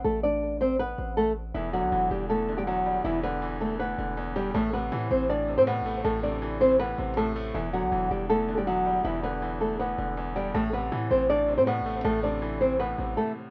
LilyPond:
<<
  \new Staff \with { instrumentName = "Nylon-string guitar" } { \time 4/4 \key e \minor \tempo 4 = 160 <a a'>8 <d' d''>4 <c' c''>8 <b b'>4 <a a'>8 r8 | <e e'>8 <fis fis'>4 <g g'>8 <a a'>8. <g g'>16 <fis fis'>4 | <e e'>8 <b b'>4 <a a'>8 <b b'>4. <g g'>8 | <a a'>8 <b b'>4 <c' c''>8 <d' d''>8. <c' c''>16 <b b'>4 |
<a a'>8 <d' d''>4 <c' c''>8 <b b'>4 <a a'>8 r8 | <e e'>8 <fis fis'>4 <g g'>8 <a a'>8. <g g'>16 <fis fis'>4 | <e e'>8 <b b'>4 <a a'>8 <b b'>4. <g g'>8 | <a a'>8 <b b'>4 <c' c''>8 <d' d''>8. <c' c''>16 <b b'>4 |
<a a'>8 <d' d''>4 <c' c''>8 <b b'>4 <a a'>8 r8 | }
  \new Staff \with { instrumentName = "Grand piano" } { \clef bass \time 4/4 \key e \minor r1 | e,8 d8 e4 e,8 d8 e,8 g8 | e,8 d8 e4 e,8 d8 e,8 g8 | a,8 c8 e4 a,8 c8 a,8 a8 |
a,8 c8 e4 a,8 c8 a,8 a8 | e,8 d8 e4 e,8 d8 e,8 g8 | e,8 d8 e4 e,8 d8 e,8 g8 | a,8 c8 e4 a,8 c8 a,8 a8 |
a,8 c8 e4 a,8 c4. | }
  \new Staff \with { instrumentName = "808-style bass" } { \clef bass \time 4/4 \key e \minor a,,2~ a,,8 a,,4. | e,,8. b,,16 e,,8 e,,2~ e,,8 | e,,2~ e,,8 e,,4. | a,,4 a,8 a,,4~ a,,16 a,8~ a,32 a,,8~ a,,32 |
a,,2~ a,,8 a,,4. | e,,8. b,,16 e,,8 e,,2~ e,,8 | e,,2~ e,,8 e,,4. | a,,4 a,8 a,,4~ a,,16 a,8~ a,32 a,,8~ a,,32 |
a,,2~ a,,8 a,,8 r4 | }
>>